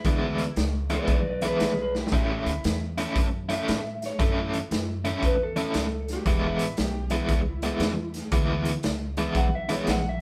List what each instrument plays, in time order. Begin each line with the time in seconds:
0.05 upright bass D2, overdriven electric guitar E3 G#3 B3 E4, clean electric guitar D4, kick, closed hi-hat
0.24 clean electric guitar E4
0.38 closed hi-hat
0.56 upright bass C#2, snare, closed hi-hat
0.90 overdriven electric guitar E3 G#3 B3 E4, closed hi-hat
0.95 clean electric guitar B4 D5
1.07 upright bass B1, clean electric guitar B4, kick, closed hi-hat
1.12 clean electric guitar D5
1.29 clean electric guitar B4 D5
1.41 overdriven electric guitar E3 G#3 B3 E4, closed hi-hat
1.46 clean electric guitar G#4 B4
1.60 upright bass B1, clean electric guitar G#4 B4, snare, closed hi-hat
1.81 clean electric guitar G#4 B4
1.95 clean electric guitar E4 G4, snare
2.07 snare
2.12 upright bass A1, overdriven electric guitar A2 A3 C#4 E4, clean electric guitar E4, kick, closed hi-hat
2.16 clean electric guitar G4
2.31 clean electric guitar E4 G4
2.45 upright bass D2, clean electric guitar E4, closed hi-hat
2.64 upright bass E2, snare, closed hi-hat
2.98 overdriven electric guitar A2 A3 C#4 E4, closed hi-hat
3.15 upright bass F#2, kick, closed hi-hat
3.49 overdriven electric guitar A2 A3 C#4 E4, closed hi-hat
3.53 clean electric guitar E5
3.68 upright bass A2, snare, closed hi-hat
4.02 clean electric guitar C#5, snare, closed hi-hat
4.19 upright bass F#2, overdriven electric guitar A2 A3 C#4 E4, clean electric guitar A4, kick, closed hi-hat
4.39 clean electric guitar E4
4.53 closed hi-hat
4.71 upright bass F#2, snare, closed hi-hat
5.05 overdriven electric guitar A2 A3 C#4 E4, closed hi-hat
5.23 upright bass E2, clean electric guitar B4, kick, closed hi-hat
5.43 clean electric guitar A4
5.56 overdriven electric guitar A2 A3 C#4 E4, closed hi-hat
5.74 upright bass C#2, snare, closed hi-hat
6.08 snare, closed hi-hat
6.13 clean electric guitar G4
6.26 upright bass E1, overdriven electric guitar E3 G#3 B3 E4, kick, closed hi-hat
6.47 clean electric guitar E4
6.59 upright bass A1, closed hi-hat
6.77 upright bass B1, snare, closed hi-hat
6.81 clean electric guitar G4
7.10 overdriven electric guitar E3 G#3 B3 E4, closed hi-hat
7.15 clean electric guitar E4
7.29 upright bass C#2, kick, closed hi-hat
7.62 overdriven electric guitar E3 G#3 B3 E4, closed hi-hat
7.79 upright bass E2, snare, closed hi-hat
8.14 snare, closed hi-hat
8.32 upright bass D2, overdriven electric guitar E3 G#3 B3 E4, kick, closed hi-hat
8.65 closed hi-hat
8.83 upright bass C#2, snare, closed hi-hat
9.17 overdriven electric guitar E3 G#3 B3 E4, closed hi-hat
9.35 upright bass B1, clean electric guitar F#5, kick, closed hi-hat
9.55 clean electric guitar E5
9.69 overdriven electric guitar E3 G#3 B3 E4, clean electric guitar C#5, closed hi-hat
9.87 upright bass A#1, clean electric guitar F#5, snare, closed hi-hat
10.09 clean electric guitar E5